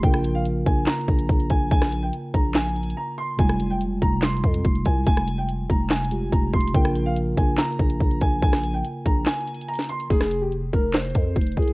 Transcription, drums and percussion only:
0.03 kick loud
0.03 closed hi-hat medium
0.14 cross-stick loud
0.24 closed hi-hat medium
0.45 closed hi-hat medium
0.66 kick loud
0.66 closed hi-hat medium
0.87 snare loud
0.87 clap medium
0.87 closed hi-hat medium
0.94 closed hi-hat medium
1.01 closed hi-hat medium
1.08 kick loud
1.08 closed hi-hat soft
1.19 closed hi-hat medium
1.29 kick loud
1.29 closed hi-hat medium
1.40 closed hi-hat soft
1.50 kick loud
1.50 closed hi-hat medium
1.71 kick loud
1.71 closed hi-hat medium
1.82 cross-stick loud
1.82 snare medium
1.92 closed hi-hat medium
2.13 closed hi-hat medium
2.34 kick loud
2.34 closed hi-hat medium
2.54 snare loud
2.54 clap medium
2.54 closed hi-hat medium
2.62 closed hi-hat medium
2.69 closed hi-hat medium
2.76 closed hi-hat soft
2.83 closed hi-hat medium
2.90 closed hi-hat medium
3.39 kick loud
3.39 closed hi-hat medium
3.49 cross-stick loud
3.60 closed hi-hat medium
3.81 closed hi-hat medium
4.02 kick medium
4.02 closed hi-hat medium
4.22 snare loud
4.22 clap medium
4.22 closed hi-hat medium
4.30 closed hi-hat medium
4.37 closed hi-hat medium
4.44 kick medium
4.44 closed hi-hat medium
4.54 closed hi-hat medium
4.65 kick loud
4.65 closed hi-hat medium
4.75 closed hi-hat soft
4.85 kick medium
4.85 closed hi-hat medium
5.07 kick loud
5.07 closed hi-hat medium
5.17 cross-stick loud
5.28 closed hi-hat medium
5.49 closed hi-hat medium
5.70 kick medium
5.70 closed hi-hat medium
5.90 snare loud
5.90 clap medium
5.90 closed hi-hat medium
5.98 closed hi-hat medium
6.05 closed hi-hat medium
6.11 closed hi-hat medium
6.33 kick loud
6.33 closed hi-hat medium
6.54 kick medium
6.54 closed hi-hat soft
6.61 closed hi-hat medium
6.68 closed hi-hat medium
6.75 kick loud
6.75 closed hi-hat medium
6.85 cross-stick loud
6.96 closed hi-hat medium
7.17 closed hi-hat medium
7.38 kick medium
7.38 closed hi-hat medium
7.58 snare loud
7.58 clap medium
7.58 closed hi-hat medium
7.65 closed hi-hat medium
7.72 closed hi-hat medium
7.79 kick medium
7.79 closed hi-hat medium
7.90 closed hi-hat medium
8.00 kick loud
8.00 closed hi-hat medium
8.11 closed hi-hat soft
8.21 kick medium
8.21 closed hi-hat medium
8.42 kick loud
8.42 closed hi-hat medium
8.53 cross-stick loud
8.53 snare medium
8.64 closed hi-hat medium
8.85 closed hi-hat medium
9.05 kick loud
9.05 closed hi-hat medium
9.26 snare loud
9.26 clap medium
9.26 closed hi-hat medium
9.33 closed hi-hat medium
9.40 closed hi-hat medium
9.47 closed hi-hat soft
9.54 closed hi-hat medium
9.61 closed hi-hat medium
9.68 closed hi-hat medium
9.74 closed hi-hat medium
9.75 closed hi-hat medium
9.79 snare medium
9.79 closed hi-hat medium
9.82 closed hi-hat medium
9.84 closed hi-hat medium
9.89 closed hi-hat medium
9.89 open hi-hat medium
10.00 closed hi-hat medium
10.10 kick loud
10.10 closed hi-hat medium
10.21 cross-stick loud
10.21 snare medium
10.31 closed hi-hat medium
10.52 closed hi-hat medium
10.73 kick medium
10.73 closed hi-hat medium
10.93 snare loud
10.93 clap medium
10.93 closed hi-hat medium
10.99 closed hi-hat medium
11.05 closed hi-hat medium
11.10 closed hi-hat soft
11.15 kick medium
11.15 closed hi-hat medium
11.36 kick loud
11.36 closed hi-hat medium
11.41 closed hi-hat medium
11.47 closed hi-hat medium
11.52 closed hi-hat medium
11.57 kick medium
11.57 closed hi-hat soft
11.62 closed hi-hat medium
11.68 closed hi-hat medium

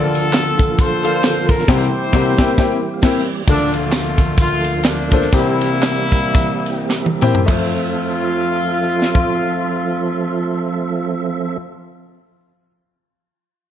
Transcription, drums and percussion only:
0.14 ride medium
0.14 tambourine medium
0.33 snare loud
0.33 clap loud
0.33 ride medium
0.33 tambourine loud
0.59 kick loud
0.59 ride medium
0.59 tambourine medium
0.78 kick loud
0.78 ride medium
0.78 tambourine loud
1.03 ride medium
1.03 tambourine medium
1.23 snare loud
1.23 clap medium
1.23 ride medium
1.23 tambourine medium
1.48 kick loud
1.48 ride medium
1.48 tambourine medium
1.59 snare soft
1.68 kick loud
1.68 snare loud
1.68 crash medium
2.13 kick loud
2.13 snare loud
2.38 kick loud
2.38 snare loud
2.58 kick loud
2.58 snare loud
3.03 kick loud
3.03 snare loud
3.03 crash medium
3.47 kick loud
3.47 ride medium
3.47 tambourine medium
3.73 ride medium
3.73 tambourine medium
3.92 snare loud
3.92 clap loud
3.92 ride medium
3.92 tambourine loud
4.18 kick loud
4.18 snare soft
4.18 ride medium
4.18 tambourine medium
4.38 kick loud
4.38 ride medium
4.38 tambourine medium
4.64 ride medium
4.64 tambourine medium
4.84 snare loud
4.84 clap medium
4.84 ride medium
4.84 tambourine medium
5.11 kick loud
5.11 ride medium
5.11 tambourine medium
5.22 snare soft
5.33 kick loud
5.33 ride medium
5.33 tambourine medium
5.61 ride medium
5.61 tambourine medium
5.82 snare loud
5.82 clap loud
5.82 ride medium
5.82 tambourine loud
6.12 kick loud
6.12 ride medium
6.12 tambourine medium
6.35 kick loud
6.35 ride medium
6.35 tambourine medium
6.66 ride medium
6.66 tambourine medium
6.90 snare medium
6.90 clap medium
6.90 tambourine medium
7.06 high tom medium
7.21 mid tom loud
7.21 tambourine medium
7.35 floor tom loud
7.48 kick loud
7.48 clap medium
7.48 crash medium
9.02 snare medium
9.15 kick medium

